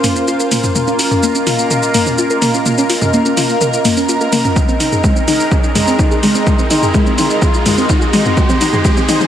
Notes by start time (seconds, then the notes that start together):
Already playing: A#3 C#4 F4 A#4 C5 F5 A#5, riser
0.04 A#3, mid tom, open hi-hat, shaker
0.16 C#4, shaker
0.28 F4, shaker
0.40 A#4, shaker
0.52 A#3, open hi-hat, mid tom, shaker
0.64 C#4, mid tom, shaker
0.73 A#3 A#4 D#5, mid tom, shaker
0.87 C#4, shaker
0.99 F4, open hi-hat, shaker
1.11 A#4, mid tom, shaker
1.23 A#3, shaker
1.35 C#4, shaker
1.47 F4, open hi-hat, mid tom, shaker
1.59 shaker
1.71 A#4, mid tom, shaker
1.83 shaker
1.94 A#3, mid tom, open hi-hat, shaker
2.06 C#4, mid tom, shaker
2.18 F4, shaker
2.30 A#4, shaker
2.42 A#3, open hi-hat, mid tom, shaker
2.54 C#4, shaker
2.66 A#3, mid tom, shaker
2.78 C#4, shaker
2.90 F4, open hi-hat, shaker
3.02 A#4, mid tom, shaker
3.13 A#3, shaker
3.26 C#4, shaker
3.37 F4, open hi-hat, mid tom, shaker
3.49 shaker
3.61 A#4, mid tom, shaker
3.73 shaker
3.85 A#3, mid tom, open hi-hat, shaker
3.97 C#4, shaker
4.09 F4, shaker
4.21 A#4, shaker
4.33 A#3, open hi-hat, mid tom, shaker
4.45 C#4, mid tom, shaker
4.56 G#3 C4 D#4, kick, mid tom, shaker
4.68 C4, shaker
4.80 D#4 G#4, open hi-hat, mid tom, shaker
4.92 G#4, mid tom, shaker
5.04 G#3, kick, mid tom, shaker
5.16 C4, shaker
5.28 D#4, open hi-hat, mid tom, shaker
5.40 C6, shaker
5.51 G#4, kick, mid tom, shaker
5.64 shaker
5.75 G#3, mid tom, open hi-hat, shaker
5.87 C4, shaker
5.99 D#4, kick, mid tom, shaker
6.11 G#4, shaker
6.23 G#3, open hi-hat, mid tom, shaker
6.35 C4, shaker
6.47 G#3, kick, mid tom, shaker
6.59 C4, shaker
6.71 D#4, open hi-hat, mid tom, shaker
6.83 G#4, mid tom, shaker
6.94 G#3, kick, mid tom, shaker
7.06 C4, shaker
7.18 D#4, open hi-hat, mid tom, shaker
7.30 shaker
7.42 G#4, kick, mid tom, shaker
7.54 shaker
7.66 G#3, mid tom, open hi-hat, shaker
7.78 C4, shaker
7.90 D#4, kick, mid tom, shaker
8.02 G#4, shaker
8.13 G#3, open hi-hat, mid tom, shaker
8.25 C4, mid tom, shaker
8.37 G#3 C5, kick, mid tom, shaker
8.49 C4, mid tom, shaker
8.61 D#4, open hi-hat, mid tom, shaker
8.73 G#4, mid tom, shaker
8.85 G#3, kick, mid tom, shaker
8.97 C4, mid tom, shaker
9.09 D#4, open hi-hat, mid tom, shaker
9.21 mid tom, shaker